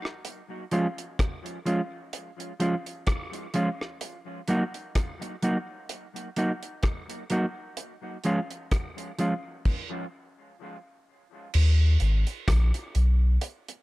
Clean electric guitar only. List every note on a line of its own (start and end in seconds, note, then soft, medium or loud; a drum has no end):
0.72 0.85 F3 medium
0.72 0.86 G#3 medium
0.72 0.86 C#4 medium
0.72 0.86 F4 medium
1.66 1.79 F3 medium
1.66 1.80 G#3 medium
1.66 1.80 C#4 medium
1.66 1.80 F4 medium
2.60 2.74 F3 medium
2.60 2.74 G#3 medium
2.60 2.74 C#4 medium
2.60 2.74 F4 medium
3.54 3.68 F3 medium
3.54 3.68 G#3 medium
3.54 3.68 C#4 medium
3.54 3.68 F4 medium
4.48 4.62 F#3 medium
4.48 4.62 A#3 loud
4.48 4.62 D#4 medium
4.48 4.63 F#4 loud
5.22 muted clean electric guitar stroke soft
5.43 5.56 F#3 medium
5.43 5.56 A#3 medium
5.43 5.57 D#4 medium
5.43 5.57 F#4 medium
6.37 6.50 F#3 medium
6.37 6.51 A#3 medium
6.37 6.51 D#4 medium
6.37 6.51 F#4 medium
7.30 7.44 F#3 medium
7.30 7.44 A#3 medium
7.30 7.45 D#4 medium
7.30 7.45 F#4 medium
8.25 8.38 F3 medium
8.25 8.38 G#3 medium
8.25 8.39 C#4 medium
8.25 8.39 F4 medium
9.18 9.32 F3 medium
9.18 9.32 G#3 medium
9.18 9.33 C#4 medium
9.18 9.33 F4 medium